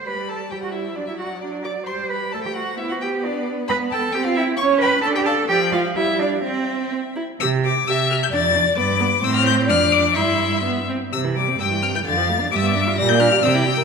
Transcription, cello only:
X:1
M:2/4
L:1/16
Q:1/4=131
K:G
V:1 name="Cello"
B2 A2 G F E2 | D E F2 D2 d2 | c2 B2 A G F2 | E F G2 D2 z2 |
[K:C] B2 A2 G F E2 | ^c2 B2 A G A2 | G2 F2 E2 D2 | C4 z4 |
C,4 C,4 | F,,4 G,,4 | A,,4 F,,4 | G,,6 z2 |
C,4 G,,4 | F,,4 G,,4 | [K:Gdor] B,,4 C,4 |]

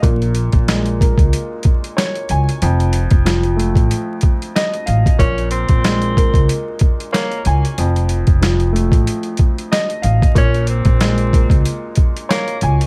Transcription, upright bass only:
X:1
M:4/4
L:1/16
Q:"Swing 16ths" 1/4=93
K:Bbm
V:1 name="Upright bass" clef=bass
B,,,3 B,,,4 D,, z6 D,, z | F,,,3 F,,,4 =A,,, z6 A,,, z | B,,,3 B,,,4 D,, z6 D,, z | F,,,3 F,,,4 =A,,, z6 A,,, z |
B,,,3 B,,,4 D,, z6 D,, z |]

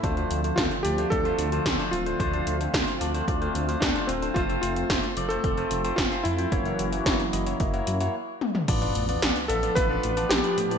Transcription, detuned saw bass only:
X:1
M:4/4
L:1/8
Q:1/4=111
K:Ddor
V:1 name="Detuned saw bass" clef=bass
D,, D,, D,, D,, D,, D,, D,, D,,, | D,, D,, D,, D,, D,, D,, D,, D,,, | F,,, F,,, F,,, F,,, F,,, F,,, F,,, F,, | ^F,,, F,,, F,,, F,,, F,,, ^F,, z2 |
A,,, A,,, A,,, A,,, A,,, A,,, A,,, A,, |]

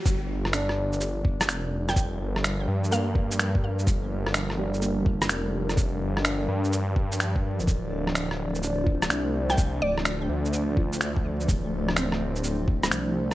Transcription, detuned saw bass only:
X:1
M:4/4
L:1/16
Q:"Swing 16ths" 1/4=126
K:Gm
V:1 name="Detuned saw bass" clef=bass
G,,,12 F,,,4- | F,,,2 G,,,4 G,,8- G,,2 | G,,,12 F,,,4- | F,,,2 G,,,4 G,,8- G,, F,,, |
D,,,12 C,,4- | C,,2 D,,,4 D,,8- D,,2 | D,,,12 C,,4 |]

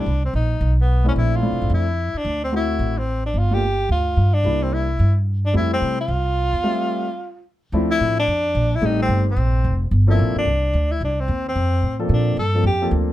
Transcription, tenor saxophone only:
X:1
M:4/4
L:1/8
Q:"Swing" 1/4=219
K:F
V:1 name="Tenor saxophone"
D C _E3 =B,2 ^C | E F3 E3 D- | D C E3 C2 D | F G3 F3 D- |
D C E3 z2 D | E C2 F4- F- | F6 z2 | [K:Dm] z E2 D4 E |
_E C2 C4 z | z E2 D4 E | D C2 C4 z | D2 A2 G2 z2 |]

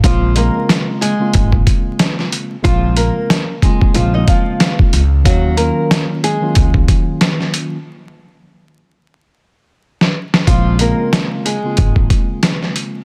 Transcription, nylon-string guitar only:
X:1
M:4/4
L:1/16
Q:"Swing 16ths" 1/4=92
K:Bbm
V:1 name="Nylon-string guitar"
[F,F]2 [B,B]4 [A,A]3 z6 z | [F,F]2 [B,B]4 [A,A]2 [F,F] [Ee] [F,F]3 z3 | [G,G]2 [B,B]4 [A,A]3 z6 z | z16 |
[F,F]2 [B,B]4 [A,A]3 z6 z |]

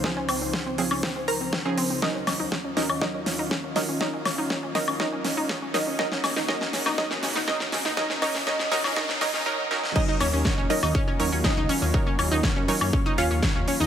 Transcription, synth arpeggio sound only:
X:1
M:4/4
L:1/16
Q:1/4=121
K:Ebdor
V:1 name="Synth arpeggio sound"
C D C C c C C D C C c C C D C C | d D D E D D d D d D D E D D d D | d D D E D D d D d D D E D D d D | d D D E d D D E d D D E d D D E |
d D d D d D d D d D d D z4 | [Dd] [Ee] [Dd] [Dd] [dd'] [Dd] [Dd] [Ee] [Dd] [Dd] [dd'] [Dd] [Dd] [Ee] [Dd] [Dd] | [dd'] [Dd] [Dd] [Ee] [Dd] [Dd] [dd'] [Dd] [Dd] [Ee] [Dd] [Dd] [dd'] [Dd] [Dd] [Ee] |]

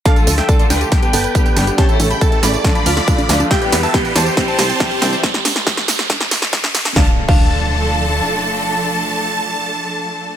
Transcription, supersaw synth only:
X:1
M:4/4
L:1/16
Q:1/4=139
K:Ddor
V:1 name="Supersaw synth"
[df] A A [eg] A A [Bg] G G [Bg]6 z | [^ca] A A [gb] A A [db] d d [db]6 z | [eg] B B [ea] B B [ca] c c [ca]6 z | z16 |
a z2 a12- a- | a16 |]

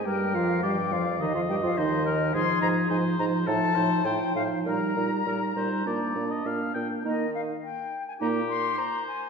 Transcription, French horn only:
X:1
M:4/4
L:1/16
Q:1/4=104
K:Eb
V:1 name="French horn" clef=bass
G,2 F,2 G,2 F,2 E, F, G, F, E,4 | F,2 F,2 F,2 F,2 F,2 F,2 F,2 F,2 | G,2 G,2 G,2 G,2 B,2 B,2 B,2 B,2 | B,2 z6 B,2 z6 |]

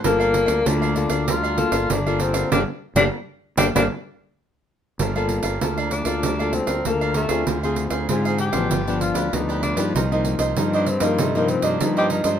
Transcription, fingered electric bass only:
X:1
M:4/4
L:1/16
Q:1/4=97
K:Gm
V:1 name="Fingered electric bass" clef=bass
G,,,3 D,, D,,3 D,,4 G,,, G,,,4 | G,,, z2 G,,, z3 G,,, G,,, z6 z | G,,,3 G,,, D,,3 D,,4 D,, D,,3 D,, | D,,3 D,, _A,,3 =A,,, G,,,3 D,, D,,3 G,, |
C,,3 C,, G,,3 G,,4 G,, G,,3 G,, |]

